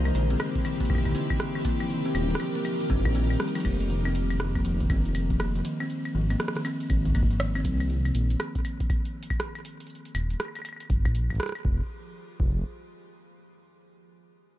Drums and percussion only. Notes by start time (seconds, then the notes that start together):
0.05 closed hi-hat, high woodblock
0.10 cabasa
0.15 closed hi-hat
0.30 closed hi-hat
0.40 cross-stick, closed hi-hat, high woodblock
0.55 kick, closed hi-hat
0.65 closed hi-hat, high woodblock
0.80 kick, closed hi-hat
0.85 closed hi-hat
0.90 kick, high woodblock
0.95 kick, high woodblock
0.98 kick, high woodblock
1.05 kick, closed hi-hat, high woodblock
1.12 kick, closed hi-hat, high woodblock
1.30 kick, high woodblock
1.40 cross-stick, closed hi-hat
1.55 high woodblock
1.65 kick, closed hi-hat
1.80 closed hi-hat, high woodblock
1.90 closed hi-hat
2.05 closed hi-hat
2.15 closed hi-hat, high woodblock
2.30 closed hi-hat
2.35 cross-stick
2.40 closed hi-hat, high woodblock
2.55 closed hi-hat, cabasa
2.65 closed hi-hat, high woodblock
2.80 closed hi-hat
2.90 kick, closed hi-hat
3.05 kick, closed hi-hat, high woodblock
3.15 closed hi-hat
3.30 closed hi-hat, high woodblock
3.40 cross-stick, closed hi-hat
3.48 closed hi-hat
3.55 closed hi-hat, high woodblock
3.60 closed hi-hat
3.65 kick, closed hi-hat, crash, high woodblock
3.80 closed hi-hat
3.90 closed hi-hat
4.05 closed hi-hat, high woodblock
4.15 closed hi-hat
4.30 closed hi-hat, high woodblock
4.40 cross-stick, closed hi-hat
4.55 kick, closed hi-hat, high woodblock
4.65 closed hi-hat
4.80 kick, closed hi-hat
4.90 kick, closed hi-hat, high woodblock
5.05 closed hi-hat
5.15 closed hi-hat, high woodblock
5.30 kick, closed hi-hat
5.40 cross-stick, closed hi-hat, high woodblock
5.55 closed hi-hat
5.65 closed hi-hat
5.80 closed hi-hat, high woodblock
5.90 closed hi-hat
6.05 closed hi-hat, high woodblock
6.30 closed hi-hat, high woodblock
6.40 cross-stick, closed hi-hat
6.48 cross-stick
6.55 cross-stick, closed hi-hat
6.65 closed hi-hat, high woodblock
6.80 closed hi-hat
6.90 kick, closed hi-hat, high woodblock
7.05 kick, closed hi-hat
7.10 kick
7.15 kick, closed hi-hat, high woodblock
7.23 kick
7.30 closed hi-hat
7.40 cross-stick, closed hi-hat
7.55 closed hi-hat, high woodblock
7.65 kick, closed hi-hat
7.80 closed hi-hat, high woodblock
7.90 closed hi-hat
8.05 closed hi-hat, high woodblock
8.15 closed hi-hat
8.30 closed hi-hat
8.40 cross-stick, closed hi-hat, high woodblock
8.55 kick, closed hi-hat
8.65 closed hi-hat, high woodblock
8.80 kick, closed hi-hat
8.90 kick, closed hi-hat, high woodblock
9.05 closed hi-hat
9.23 closed hi-hat
9.30 kick, closed hi-hat, high woodblock
9.40 cross-stick, closed hi-hat
9.55 closed hi-hat, high woodblock
9.65 closed hi-hat
9.80 closed hi-hat
9.87 closed hi-hat
9.90 closed hi-hat
9.95 closed hi-hat
10.05 closed hi-hat
10.15 closed hi-hat, high woodblock
10.30 closed hi-hat
10.40 cross-stick, closed hi-hat, high woodblock
10.45 high woodblock
10.48 high woodblock
10.55 closed hi-hat, high woodblock
10.62 closed hi-hat, high woodblock
10.65 high woodblock
10.69 high woodblock
10.73 high woodblock
10.77 closed hi-hat, high woodblock
10.80 high woodblock
10.83 high woodblock
10.85 high woodblock
10.88 kick, closed hi-hat, high woodblock
11.05 kick, closed hi-hat, high woodblock
11.15 closed hi-hat
11.30 kick, closed hi-hat, high woodblock
11.32 kick
11.34 kick, closed hi-hat
11.36 kick
11.38 kick, cross-stick, closed hi-hat
11.43 cross-stick
11.46 cross-stick, closed hi-hat
11.49 cross-stick
11.52 cross-stick, closed hi-hat, high woodblock
11.65 kick
12.40 kick